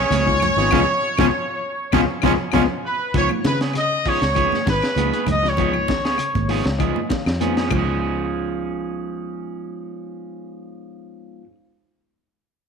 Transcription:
Already playing: C#4 G#4 C#5
0.00 B3 C#4
0.10 C#2 C#3 F3 B3 C#4 G#4, snare, closed hi-hat, high conga
0.26 G#3 B3 D#4 F4, muted clean electric guitar stroke, kick, snare
0.40 F3, muted clean electric guitar stroke, closed hi-hat, high conga, low conga, claves
0.56 G#1 G#3 B3 C#4 D#4 F4 G#4, snare, closed hi-hat
0.70 C#2 B2 C#3 F3 B3 C#4 F4, kick, snare, low conga, claves
1.17 C#2 B2 C#3 F3 B3 C#4 F4, kick, snare, low conga, claves
1.92 C#2 B2 C#3 F3 B3 C#4 F4, kick, snare, low conga, claves
2.22 C#2 B2 C#3 F3 B3 C#4 F4, kick, snare, low conga, claves
2.52 C#2 B2 C#3 F3 B3 C#4 F4, kick, snare, low conga, claves
2.85 B4
3.14 C#2 F3 G#3 B3 C#4 D#4 F4 C#5, muted clean electric guitar stroke, kick, closed hi-hat, low conga
3.29 muted clean electric guitar stroke, high conga, claves
3.44 C#3 D#3 B4, muted clean electric guitar stroke, snare, closed hi-hat, high conga
3.61 B3 C#4 G#4, snare, closed hi-hat
3.73 C#3 D#5, muted clean electric guitar stroke, snare, closed hi-hat, claves
4.05 F3 G#3 B3 C#4 D#4 F4 G#4 C#5, kick, open hi-hat
4.22 C#2, muted clean electric guitar stroke, snare, closed hi-hat
4.35 F3 G#3 B3 C#4 D#4 G#4, kick, closed hi-hat, claves
4.52 muted fingered electric bass stroke, snare, high conga
4.66 G#1 D#3 B4, muted clean electric guitar stroke, kick, snare, closed hi-hat, high conga
4.82 muted clean electric guitar stroke, snare, closed hi-hat, claves
4.96 C#2 F3 G#3 B3 C#4 D#4 G#4, closed hi-hat, high conga
5.13 B3 C#4 G#4, closed hi-hat
5.26 C#2 D#3, muted clean electric guitar stroke, closed hi-hat, high conga, low conga, claves
5.31 D#5
5.43 F3, muted clean electric guitar stroke, snare
5.48 C#5
5.57 F3 G#3 B3 C#4 D#4 F4 G#4, kick, closed hi-hat, low conga
5.74 muted clean electric guitar stroke, claves
5.88 D#3, muted clean electric guitar stroke, kick, snare, closed hi-hat, high conga
6.05 B3 C#4 G#4, snare, closed hi-hat
6.18 C#3, muted clean electric guitar stroke, closed hi-hat, claves
6.35 G#1, kick, closed hi-hat, high conga
6.48 F3 G#3 B3 C#4 D#4 F4 G#4 C#5, open hi-hat
6.65 C#2, muted clean electric guitar stroke, snare, closed hi-hat
6.79 F3 G#3 B3 D#4 F4 G#4 D#5, muted clean electric guitar stroke, kick, closed hi-hat, claves
6.96 high conga
7.09 D#3 F5, muted clean electric guitar stroke, kick, snare, closed hi-hat, high conga
7.26 F2, muted clean electric guitar stroke, snare, closed hi-hat, claves
7.41 F3 G#3 B3 C#4 D#4 F4 G#4 G#5, closed hi-hat, high conga
7.57 B3 C#4 G#4 G#5, snare, closed hi-hat
7.68 C#2 C#3 F3 G#3 B3, kick, crash, claves
7.72 C#4 D#4 F4, muted clean electric guitar stroke, low conga
7.79 G#4

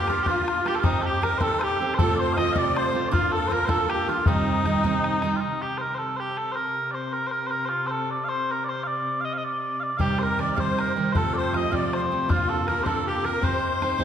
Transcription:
Already playing: G4
0.07 A#3 D4 F4 A#4, bodhran
0.23 F4 G4, bodhran
0.27 A#3 D4 F4 A#4
0.48 bodhran
0.65 A#3 D4 F4 G4 A#4, bodhran
0.75 A4
0.80 C4 F4
0.84 D#4 G4 C5, bodhran
1.02 G4 A4
1.06 G4
1.22 C4 D#4 G4 A#4 C5, bodhran
1.38 C4 D#4 G4 A4 C5, bodhran
1.43 A4
1.59 C5, bodhran
1.63 G4
1.80 C4 D#4 G4 C5
1.94 A4 C5
1.98 C3 A3 C4 F4 A4 C5, bodhran
2.15 D5
2.19 C5
2.33 D#5 F5
2.37 C4 F4 A4 C5 D#5, bodhran
2.53 C3 A3 C4 F4 A4 C5 D5 F5, bodhran
2.57 D5
2.76 C5, bodhran
2.93 C4 F4 A4 C5
3.09 A#3 D4 F4 A#4 D5
3.13 F4, bodhran
3.32 A4
3.48 A#3 D4 F4 A#4 C5
3.52 A#4, bodhran
3.65 A#3 D4 F4 A4 A#4 C5, bodhran
3.70 A4
3.89 G4, bodhran
4.08 A#3 D4 F4 A#4
4.26 C3 D#3 G3 C4 D#4, bodhran
4.65 D#3 G3 C4 D#4, bodhran
4.84 C3 D#3 G3 C4 D#4, bodhran
5.04 bodhran
5.22 D#3 G3 C4 D#4, bodhran
5.36 F4
5.41 C3 D#4
5.62 G4
5.78 A#4 C5
5.95 A4 C5
6.17 G4 C5
6.38 A4
6.52 A#4 C5
6.91 C5 D5
7.13 A#4
7.27 C5
7.31 A#4
7.47 C5
7.51 A#4
7.65 F4 C5
7.87 A4 C5
8.10 D5
8.24 F5
8.29 C5
8.51 A#4
8.64 D5
8.69 C5
8.83 D5 F5
9.21 F5
9.25 D#5
9.33 F5
9.38 D#5
9.44 D5
9.80 D5 F5
9.97 C3 D#3 G3 C4 D#4 G4 F5, bodhran
10.19 A#4 C5
10.23 A#4
10.38 D#3 G3 C4 D#4 D5, bodhran
10.53 C3 D5 F5
10.57 D#3 G3 C4 D#4 C5, bodhran
10.79 A#4, bodhran
10.96 D#3 G3 C4 D#4
11.12 C3 F3 A3 C4 F4 A4 C5, bodhran
11.17 A4
11.34 C5 D5
11.38 C5
11.53 F3 A3 C4 F4 D#5 F5, bodhran
11.71 C3 F3 A3 C4 F4 D5 F5, bodhran
11.75 D5
11.93 C5, bodhran
12.11 F3 A3 C4 F4
12.29 A#3 D4 F4 A#4, bodhran
12.49 A4
12.67 A#3 D4 F4 A#4, bodhran
12.81 G4 A4 C5
12.86 A#3 D4 F4 A4 A#4, bodhran
13.05 G4
13.23 A#3 D4 F4 A#4
13.42 C4 D#4 G4 C5, bodhran
13.82 C4 D#4 G4 C5, bodhran
13.98 C4 D#4 G4 C5, bodhran

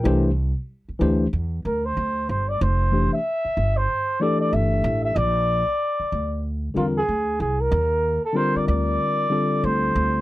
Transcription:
Already playing: A#4 G5
0.04 C2 E3 A3 D4 G4 C5
0.89 muted upright bass stroke
0.99 D2 E3 A3 D4 G4 C5
1.33 E2
1.65 D2 A#4
1.85 C5
1.97 D2
2.29 G1 C5
2.49 D5
2.61 F1 C5
2.91 E3 A3 D4 G4 C5
3.13 E5
3.45 muted upright bass stroke
3.57 G1
3.77 C5
4.20 E3 A3 D4 G4 A4 D5
4.41 D5
4.53 G1 E5
4.84 A1
5.05 E5
5.16 A#1 D5
6.00 muted upright bass stroke
6.12 D2
6.74 E2 D3 G3 C4 F4 A#4
6.97 G#4
7.09 D2
7.40 C2 G#4
7.61 A#4
7.72 D#2
8.25 A4
8.33 D3 G3 C4 F4 A#4 C5
8.56 D5, muted upright bass stroke
8.68 D2 D5
9.30 D3 G3 C4 F4 A4
9.64 D2 C5
9.95 D2

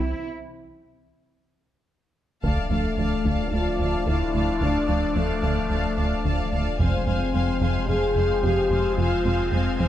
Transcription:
Already playing: E3 C4 E4 C5
0.00 C2 C4 E4
2.43 D1 D2 D3 F3 A3 D4 D5 F5 A5, taiko
2.71 D2 F3 D5 F5 A5
2.98 D2 F3 D5 F5 A5
3.25 D2 D3 D5 F5 A5, taiko
3.52 D2 F4 D5 F5 A5
3.79 D2 D5 F5 A5
4.07 D2 D3 E4 D5 F5 A5
4.33 D2 D5 F5 A5
4.60 D2 D3 D4 D5 F5 A5
4.88 D2 F3 D5 F5 A5
5.15 D2 F3 A3 D5 F5 A5
5.42 D2 D3 D5 F5 A5
5.69 D2 D5 F5 A5
5.97 D2 D5 F5 A5
6.24 D2 D3 D5 F5 A5
6.52 D2 D5 F5 A5
6.79 F1 F2 F3 G#3 C4 C5 F5 G#5, taiko
7.07 F1 F2 G#3 C5 F5 G#5
7.34 F1 F2 G#3 C5 F5 G#5
7.61 F1 F2 F3 C5 F5 G#5
7.88 F1 F2 G#4 C5 F5 G#5
8.16 F1 F2 C5 F5 G#5
8.43 F1 F2 F3 G4 C5 F5 G#5
8.71 F1 F2 C5 F5 G#5
8.96 F1 F2 F3 F4 C5 F5 G#5
9.25 F1 F2 G#3 C5 F5 G#5
9.52 F1 F2 G#3 C4 C5 F5 G#5
9.79 F1 F2 F3 C5 F5 G#5

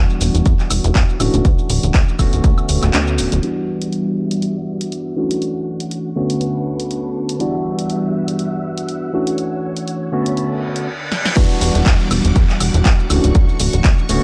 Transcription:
Already playing: E3 G3 B3 D4 F#4
0.10 shaker
0.21 E1, open hi-hat, shaker
0.34 E1, closed hi-hat, shaker
0.46 E2, kick, closed hi-hat, shaker
0.60 clap, shaker
0.71 E1, open hi-hat, high woodblock, shaker
0.84 E1, closed hi-hat, shaker
0.95 E2, kick, clap, closed hi-hat, shaker
1.09 shaker
1.19 D1 E3 A3 C#4 D4 F#4, open hi-hat, high woodblock, shaker
1.34 D1, closed hi-hat, shaker
1.45 D2, kick, closed hi-hat, shaker
1.59 D1, shaker
1.70 D1, open hi-hat, shaker
1.83 D1, closed hi-hat, shaker
1.94 D2, kick, clap, closed hi-hat, shaker
2.08 shaker
2.19 D1 D3 A3 B3 C#4 F#4, kick, open hi-hat, high woodblock, shaker
2.33 D1, closed hi-hat, shaker
2.44 D2, kick, closed hi-hat, shaker
2.58 D1, high woodblock, shaker
2.69 D1, open hi-hat, shaker
2.83 D1, clap, closed hi-hat, high woodblock, shaker
2.94 D2, clap, closed hi-hat, shaker
3.07 shaker
3.18 D1, open hi-hat, shaker
3.32 D1, closed hi-hat, shaker
3.43 E3 G3 B3 D4 F#4 E5 F#5 D6, closed hi-hat
3.82 closed hi-hat
3.93 closed hi-hat
4.31 closed hi-hat
4.42 closed hi-hat
4.81 closed hi-hat
4.92 closed hi-hat
5.16 E3 A3 C#4 D4 F#4 C#6
5.31 closed hi-hat
5.42 closed hi-hat
5.80 closed hi-hat
5.91 closed hi-hat
6.16 D3 A3 B3 C#4 F#4 B4 A5
6.30 closed hi-hat
6.41 closed hi-hat
6.79 closed hi-hat
6.91 closed hi-hat
7.29 closed hi-hat
7.39 E3 G3 B3 D4 F#4 E5 F#5 E6, closed hi-hat
7.79 closed hi-hat
7.90 closed hi-hat
8.28 closed hi-hat
8.39 closed hi-hat
8.77 closed hi-hat
8.88 closed hi-hat
9.13 E3 A3 C#4 D4 F#4 C#5
9.27 closed hi-hat
9.38 closed hi-hat
9.77 closed hi-hat
9.88 closed hi-hat
10.12 D3 A3 B3 C#4 F#4 A5 B5
10.26 closed hi-hat
10.37 closed hi-hat, reverse cymbal
10.76 closed hi-hat
11.12 snare
11.26 snare
11.36 E2 E3 G3 B3 D4 F#4 F#5 D6, kick, closed hi-hat, crash, downlifter, shaker
11.51 shaker
11.61 E1, open hi-hat, shaker
11.75 E1, closed hi-hat, shaker
11.86 E2, kick, clap, closed hi-hat, shaker
12.00 shaker
12.11 E1, open hi-hat, high woodblock, shaker
12.25 E1, closed hi-hat, shaker
12.36 E2, kick, closed hi-hat, shaker
12.50 clap, shaker
12.60 E1, open hi-hat, high woodblock, shaker
12.74 E1, closed hi-hat, shaker
12.85 E2, kick, clap, closed hi-hat, shaker
12.99 shaker
13.10 D1 E3 A3 C#4 D4 F#4 C#6, open hi-hat, high woodblock, shaker
13.24 D1, closed hi-hat, shaker
13.35 D2, kick, closed hi-hat, shaker
13.49 shaker
13.60 D1, open hi-hat, shaker
13.73 D1, closed hi-hat, shaker
13.84 D2, kick, clap, closed hi-hat, shaker
13.98 shaker
14.09 D1 D3 A3 B3 C#4 F#4 A4, open hi-hat, shaker

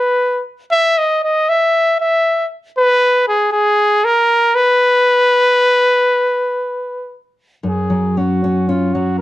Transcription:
Already playing: B4
0.72 E5
0.98 D#5
1.24 D#5
1.49 E5
2.00 E5
2.78 B4
3.28 G#4
3.53 G#4
4.05 A#4
4.55 B4
7.63 F#2
7.67 G#4
7.90 F#3
8.17 C#4 F#4
8.44 C#4
8.69 C#4 F4
8.94 F#3 F#4

